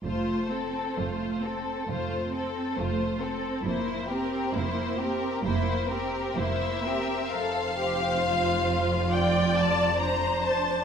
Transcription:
<<
  \new Staff \with { instrumentName = "Violin section" } { \time 4/4 \key f \major \tempo 4 = 67 << { r1 | r2. e''4 | f''2 g''8 a''8 bes''8 a''8 | } \\ { c''8 a'8 c''8 a'8 c''8 a'8 c''8 a'8 | c''8 bes'8 c''8 bes'8 c''8 bes'8 c''8 bes'8 | r1 | } >> }
  \new Staff \with { instrumentName = "Violin section" } { \time 4/4 \key f \major << { f'8 a'8 f'8 a'8 f'8 a'8 f'8 a'8 | e'8 g'8 e'8 g'8 e'8 g'8 e'8 g'8 | c''2 d''4 c''4 | } \\ { r1 | r1 | a'8 g'8 f'2 d'4 | } >> }
  \new Staff \with { instrumentName = "Viola section" } { \time 4/4 \key f \major a8 c'8 a8 c'8 a8 c'8 a8 c'8 | bes8 c'8 bes8 c'8 bes8 c'8 bes8 c'8 | r2 d''4 c''4 | }
  \new Staff \with { instrumentName = "Cello section" } { \clef bass \time 4/4 \key f \major f,4 f,4 f,4 f,4 | f,4 f,4 f,4 f,4 | f,1 | }
  \new Staff \with { instrumentName = "Double bass section" } { \clef bass \time 4/4 \key f \major f,,4 f,,4 f,,4 f,,4 | f,,4 f,,4 f,,4 f,,4 | f,,1 | }
>>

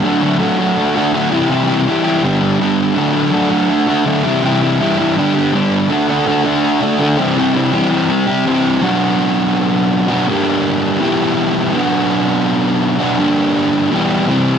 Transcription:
\new Staff \with { instrumentName = "Distorted electric guitar" } { \time 4/4 \key d \mixolydian \tempo 4 = 164 <d fis a d' fis'>8 <a d' fis'>8 <fis a d' fis'>8 <a d' fis'>4 <a d' fis'>8 <d fis a d' fis'>8 <c e g e' g'>8 | <c e g e' g'>8 <g e' g'>8 <e g e' g'>8 <g e' g'>8 <g, d g b d' g'>8 <g b d' g'>8 <g, d g b d' g'>4 | <d fis a d' fis'>8 <a d' fis'>8 <fis a d' fis'>8 <a d' fis'>4 <a d' fis'>8 <d fis a d' fis'>8 <c e g e' g'>8 | <c e g e' g'>8 <g e' g'>8 <e g e' g'>8 <g e' g'>8 <g, d g b d' g'>8 <g b d' g'>8 <g, d g b d' g'>4 |
<d a d' fis'>8 <a d' fis'>8 <d a d' fis'>8 <a d' fis'>4 <a d' fis'>8 <d a d' fis'>8 <c e g c' g'>8 | <c e g c' g'>8 <g c' g'>8 <e g c' g'>8 <g c' g'>4 <g c' g'>8 <c e g c' g'>4 | <b, fis b d' fis'>2.~ <b, fis b d' fis'>8 <b, fis b d' fis'>8 | <g, d g bes d' g'>2 <e, b, e g e' g'>2 |
<b, fis b d' fis'>2.~ <b, fis b d' fis'>8 <b, fis b d' fis'>8 | <g, d g bes d' g'>2 <e, b, e g b g'>4 <c e g c' g'>4 | }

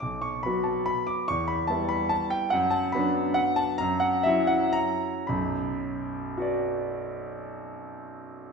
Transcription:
<<
  \new Staff \with { instrumentName = "Grand piano" } { \time 3/4 \key b \minor \tempo 4 = 139 << { d'''8 cis'''8 b''8 a''8 b''8 d'''8 | cis'''8 b''8 a''8 b''8 a''8 g''8 | fis''8 a''8 b''4 fis''8 a''8 | ais''8 fis''8 e''8 fis''8 ais''4 |
b''2.~ | b''2. | } \\ { r2. | r2. | r2. | r2. |
r2 <fis' b' d''>4~ | <fis' b' d''>2. | } >> }
  \new Staff \with { instrumentName = "Grand piano" } { \clef bass \time 3/4 \key b \minor b,,4 <fis b fis'>2 | e,4 <g b e'>2 | fis,4 <fis b d'>2 | fis,4 <fis cis' e'>2 |
<b,, fis,>2.~ | <b,, fis,>2. | }
>>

